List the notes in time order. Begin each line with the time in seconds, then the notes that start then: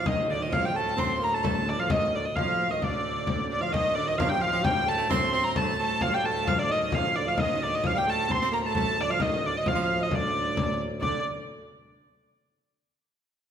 0.05 D2 A2 D#3 D#5, frame drum
0.28 D3 D5, frame drum
0.40 D#3 D#5
0.50 F3 F5, frame drum
0.64 G5
0.74 A3 A5, frame drum
0.97 C4 C6, frame drum
1.20 A#3 A#5, frame drum
1.24 A#5
1.32 A3 A5
1.38 A#5
1.43 A3 A5, frame drum
1.66 D3 D5, frame drum
1.78 F3 F5
1.89 D#3 D#5, frame drum
2.10 D3 D#3, frame drum
2.14 D5
2.25 D#5
2.36 F3 F5, frame drum
2.50 F5
2.69 D#3 D#5
2.82 D3 D5, frame drum
3.27 frame drum
3.49 D3 D5, frame drum
3.61 F3 F5
3.71 D2 A2 D#3 D#5, frame drum
3.95 D3 D5, frame drum
4.07 D#3 D#5
4.18 F3 F5, frame drum
4.29 G3 G5
4.40 F3 F5, frame drum
4.47 F3
4.52 F3
4.63 G3 G5, frame drum
4.87 A3 A5, frame drum
4.97 A3 A5
5.10 C4 C6, frame drum
5.32 C4 C6, frame drum
5.44 A#5
5.55 A3 A5, frame drum
5.79 A3 A5, frame drum
6.01 F3 F5, frame drum
6.12 G3 A3 G5
6.22 A3 A5, frame drum
6.45 F3 F5, frame drum
6.57 D3 D5
6.68 D#3 D#5, frame drum
6.92 F3 F5, frame drum
7.15 D3 D5, frame drum
7.25 F3 F5
7.35 D#5, frame drum
7.39 D2 A2 D#3 D#5
7.59 D5, frame drum
7.63 D5
7.70 D#5
7.75 D#5
7.83 F3 F5, frame drum
7.87 F5
7.95 G3 G5
8.07 A3 A5, frame drum
8.28 C4 C6, frame drum
8.34 C4
8.41 C4
8.52 A#3 A#5, frame drum
8.63 A3 A5 A#5
8.75 A3 A5, frame drum
8.97 D3 D5, frame drum
9.09 F3 F5
9.20 D#3 D#5, frame drum
9.42 D3 D5, frame drum
9.46 D5
9.57 D#5
9.66 F3 F5, frame drum
9.75 F3 F5
9.81 F5
9.89 frame drum
10.00 D#5
10.10 D3 D5, frame drum
10.15 D5
10.34 frame drum
10.57 frame drum
11.00 D3 D5, frame drum